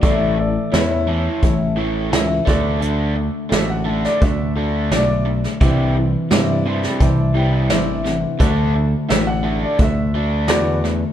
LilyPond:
<<
  \new Staff \with { instrumentName = "Grand piano" } { \time 4/4 \key d \mixolydian \tempo 4 = 86 << { d''8 d''8 e''2. | r4 e''16 fis''8 d''16 e''4 d''8 r8 | r1 | r4 e''16 fis''8 d''16 e''4 d''8 r8 | } \\ { a'8 a'8 cis''2~ cis''8 r8 | r1 | r1 | r2. fis'8 r8 | } >> }
  \new Staff \with { instrumentName = "Upright piano" } { \time 4/4 \key d \mixolydian <e' a' cis'''>8 r8 <e' a' b'>8 r8 <e' a' cis''>8 r8 <e' a' cis''>8 <fis' a' d''>8~ | <fis' a' d''>8 r8 <fis' a' d''>8 r8 <fis' a' d''>8 r8 <fis' a' d''>8 r8 | <e' c'' d''>8 r8 <e' c'' d''>8 c'''16 b''16 <e' c'' d'' a''>8 g''16 e''16 <e' c'' d'' e''>8 fis''8 | <fis' a' d''>8 r8 <fis' a' d''>8 r8 <fis' a' e''>8 r8 <fis' a' b'>8 r8 | }
  \new Staff \with { instrumentName = "Steel-string acoustic guitar" } { \time 4/4 \key d \mixolydian <a, e a e'>4 <a, e a cis' e'>8 <a cis'>8 <e a cis' e'>8 <a cis' e'>8 <a, e a cis' e'>8 <d a d' fis'>8~ | <d a d' fis'>4 <d a d' fis'>8 <a d' fis'>8 <d a d' fis'>8 <a d' fis'>8 <d a d' fis'>4 | <c e g d' e'>4 <c e g d' e'>8 <g d' e'>8 <e g d' e'>8 <g d' e'>8 <c e g d' e'>4 | <d a d' fis'>4 <d a d' fis'>8 <a fis'>8 <d fis'>8 <a d' fis'>8 <d a d' fis'>4 | }
  \new Staff \with { instrumentName = "Overdriven electric guitar" } { \clef bass \time 4/4 \key d \mixolydian <a, e a>8 <a, e>8 <a, e>8 <a, e a>8 <a, e>8 <a, e a>8 <a, e>8 <d a d'>8 | <d a d'>8 <d a>8 <d a>8 <d a d'>8 <d a>8 <d a d'>8 <d a>8 <d a>8 | <c e g>8 <c e>8 <c e>8 <c e g>8 <c e>8 <c e g>8 <c e>8 <c e>8 | <d a d'>8 <d a>8 <d a>8 <d a d'>8 <d a>8 <d a d'>8 <d a>8 <d a>8 | }
  \new Staff \with { instrumentName = "Picked electric bass" } { \clef bass \time 4/4 \key d \mixolydian a,,4 e,4 a,,4 cis,8 d,8~ | d,4 a,,4 d,4 b,,4 | c,4 g,4 c,4 a,,4 | d,4 a,,4 d,4 e,4 | }
  \new DrumStaff \with { instrumentName = "Drums" } \drummode { \time 4/4 <hh bd>4 <hh sn>4 <hh bd>4 <hh sn>8 <bd sn>8 | hh4 <hh sn>8. sn16 <hh bd>4 <hh sn>8. sn16 | <hh bd>4 <hh sn>8. sn16 <hh bd>4 <hh sn>8 sn8 | <hh bd>4 <hh sn>4 <hh bd>4 <hh sn>8 sn8 | }
>>